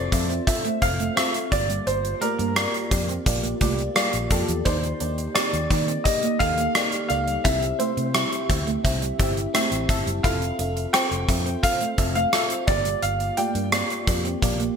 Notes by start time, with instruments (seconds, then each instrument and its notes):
Already playing: fm electric piano C4 F4 A4 C5 E5, grand piano D5
0.12 fingered electric bass F2, fm electric piano C4 F4 A4 E5, kick, closed hi-hat
0.29 clean electric guitar C4, closed hi-hat
0.47 fm electric piano C4 F4 A4 E5, grand piano E5, kick, closed hi-hat
0.65 clean electric guitar A3, closed hi-hat
0.81 fingered electric bass F1, fm electric piano C4 F4 A4 E5, grand piano F5, kick, closed hi-hat
0.99 clean electric guitar A3, closed hi-hat
1.16 fm electric piano C4 F4 A4 E5, clean electric guitar C4, cross-stick, closed hi-hat
1.34 closed hi-hat
1.51 fingered electric bass G1, fm electric piano G2 A#3 F4 G4 D5, grand piano D5, muted clean electric guitar stroke, kick, closed hi-hat
1.69 clean electric guitar G3, closed hi-hat
1.87 fingered electric bass G1, grand piano C5, closed hi-hat
2.04 muted clean electric guitar stroke, closed hi-hat
2.21 clean electric guitar A3, fm electric piano A#3 F4 G4 D5, grand piano A#4, closed hi-hat
2.39 fingered electric bass G2, clean electric guitar A#3, closed hi-hat
2.56 fm electric piano A#3 F4 G4 D5, clean electric guitar C4, cross-stick, closed hi-hat
2.74 muted clean electric guitar stroke, closed hi-hat
2.91 fingered electric bass F2, fm electric piano A#3 F4 G4 D5, kick, closed hi-hat
3.09 clean electric guitar C4, closed hi-hat
3.26 fingered electric bass A#1, fm electric piano A#3 F4 G4 D5, muted clean electric guitar stroke, kick, closed hi-hat
3.43 clean electric guitar A#3, closed hi-hat
3.61 fingered electric bass C2, clean electric guitar A3, fm electric piano A#3 F4 G4 D5, kick, closed hi-hat
3.79 closed hi-hat
3.95 clean electric guitar G3, fm electric piano A#3 F4 G4 D5, cross-stick, closed hi-hat
4.13 fingered electric bass A#1, muted clean electric guitar stroke, closed hi-hat
4.31 fingered electric bass F2, fm electric piano A#3 F4 G4 A4, kick, closed hi-hat
4.48 fingered electric bass E2, clean electric guitar F3, closed hi-hat
4.65 fingered electric bass D#2, fm electric piano D#3 A#3 D#4 G4 D5, clean electric guitar D#4, grand piano C5, kick, closed hi-hat
4.83 closed hi-hat
5.00 fingered electric bass D#2, fm electric piano A#3 D#4 G4 D5, clean electric guitar D4, closed hi-hat
5.18 muted clean electric guitar stroke, closed hi-hat
5.35 fm electric piano A#3 D#4 G4 D5, clean electric guitar C4, grand piano D5, cross-stick, closed hi-hat
5.53 fingered electric bass D#2, muted clean electric guitar stroke, closed hi-hat
5.70 fingered electric bass D#3, fm electric piano A#3 D#4 G4 D5, kick, closed hi-hat
5.88 clean electric guitar C4, closed hi-hat
6.04 fm electric piano A#3 D#4 G4 D5, grand piano D#5, kick, closed hi-hat
6.23 clean electric guitar A#3, closed hi-hat
6.39 fingered electric bass D#2, fm electric piano A#3 D#4 G4 A4, grand piano F5, muted clean electric guitar stroke, kick, closed hi-hat
6.58 clean electric guitar A#3, closed hi-hat
6.75 fm electric piano A#3 D#4 G4 D5, clean electric guitar C4, cross-stick, closed hi-hat
6.92 closed hi-hat
7.09 fingered electric bass C#2, fm electric piano A#3 D#4 G4 D5, grand piano F5, muted clean electric guitar stroke, closed hi-hat
7.28 clean electric guitar G3, closed hi-hat
7.44 fingered electric bass C2, fm electric piano C3 C4 E4 G4 E5, grand piano E5, kick, closed hi-hat
7.63 muted clean electric guitar stroke, closed hi-hat
7.79 clean electric guitar A3, fm electric piano C4 E4 G4 E5, grand piano C5, closed hi-hat
7.97 fingered electric bass C3, clean electric guitar A3, closed hi-hat
8.14 clean electric guitar G3, fm electric piano C4 E4 G4 E5, cross-stick, closed hi-hat
8.32 muted clean electric guitar stroke, closed hi-hat
8.49 fingered electric bass D2, fm electric piano C4 E4 G4 E5, kick, closed hi-hat
8.67 clean electric guitar A3, closed hi-hat
8.84 fingered electric bass C2, fm electric piano C4 E4 G4 E5, muted clean electric guitar stroke, kick, closed hi-hat
9.02 clean electric guitar G3, closed hi-hat
9.19 fingered electric bass G1, fm electric piano C4 E4 G4 E5, clean electric guitar C4, kick, closed hi-hat
9.37 closed hi-hat
9.54 clean electric guitar A3, fm electric piano C4 E4 G4 E5 G5, cross-stick, closed hi-hat
9.71 fingered electric bass A1, muted clean electric guitar stroke, closed hi-hat
9.89 fingered electric bass G1, fm electric piano C4 E4 G4 E5 A5, kick, closed hi-hat
10.06 fingered electric bass F#1, clean electric guitar G3, closed hi-hat
10.23 fingered electric bass F1, fm electric piano C4 F4 A4 E5, clean electric guitar E4, grand piano F5, kick, closed hi-hat
10.42 closed hi-hat
10.59 fingered electric bass F1, fm electric piano C4 F4 A4 E5, clean electric guitar D4, closed hi-hat
10.76 muted clean electric guitar stroke, closed hi-hat
10.93 clean electric guitar C4, fm electric piano C4 F4 A4 C5, grand piano G5, cross-stick, closed hi-hat
11.11 fingered electric bass F1, muted clean electric guitar stroke, closed hi-hat
11.28 fingered electric bass F2, fm electric piano C4 F4 A4 E5, kick, closed hi-hat
11.46 clean electric guitar C4, closed hi-hat
11.63 fm electric piano C4 F4 A4 F5, grand piano F5, kick, closed hi-hat
11.81 clean electric guitar A3, closed hi-hat
11.98 fingered electric bass F1, fm electric piano C4 F4 A4 E5, muted clean electric guitar stroke, kick, closed hi-hat
12.15 clean electric guitar A3, grand piano F5, closed hi-hat
12.33 fm electric piano C4 F4 A4 E5, clean electric guitar C4, cross-stick, closed hi-hat
12.50 closed hi-hat
12.67 fingered electric bass G1, fm electric piano G2 A#3 F4 G4 D5, grand piano D5, muted clean electric guitar stroke, kick, closed hi-hat
12.85 clean electric guitar G3, closed hi-hat
13.02 fingered electric bass G1, grand piano F5, closed hi-hat
13.20 muted clean electric guitar stroke, closed hi-hat
13.37 clean electric guitar A3, fm electric piano A#3 F4 G4 D5, grand piano G5, closed hi-hat
13.55 fingered electric bass G2, clean electric guitar A#3, closed hi-hat
13.72 fm electric piano A#3 F4 G4 D5, clean electric guitar C4, cross-stick, closed hi-hat
13.90 muted clean electric guitar stroke, closed hi-hat
14.07 fingered electric bass F2, fm electric piano A#3 F4 G4 D5, kick, closed hi-hat
14.25 clean electric guitar C4, closed hi-hat
14.42 fingered electric bass A#1, fm electric piano A#3 F4 G4 D5, muted clean electric guitar stroke, kick, closed hi-hat
14.60 clean electric guitar A#3, closed hi-hat